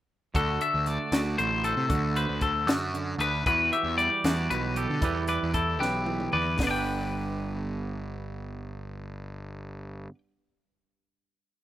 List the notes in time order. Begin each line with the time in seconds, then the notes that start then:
0.34 D2 D3 F#4 A4, kick, closed hi-hat
0.61 A4 E5, closed hi-hat
0.74 D2
0.86 A3 D5, closed hi-hat
1.12 D2 F#4, snare, closed hi-hat
1.38 A1 A2 C5, closed hi-hat
1.64 A4 C5, closed hi-hat
1.77 C3
1.89 D2 D3 F#4, kick, closed hi-hat
2.16 B4 C5, closed hi-hat
2.29 D2
2.41 A4, kick, closed hi-hat
2.67 F#2 F#4, snare, closed hi-hat
2.94 D3, closed hi-hat
3.18 D2 B4, closed hi-hat
3.46 E2 E3 F#4 B4, kick, closed hi-hat
3.73 G4 E5, closed hi-hat
3.84 E2
3.97 G3 D5, closed hi-hat
4.24 E2 F#4, snare, closed hi-hat
4.50 B1 B2 B4, closed hi-hat
4.76 G4 A4, closed hi-hat
4.90 D3
5.01 E2 E3 E4 G4 B4, kick, closed hi-hat
5.27 B4 D5, closed hi-hat
5.43 E2
5.54 E4 A4, kick, closed hi-hat
5.80 B1 G4 B4, snare
6.06 E3, high tom
6.20 mid tom
6.32 E2 B4 D5, mid tom
6.58 G1 G2, kick, snare, open hi-hat
6.63 B3 B4
6.67 D4 D5 G5
6.79 B4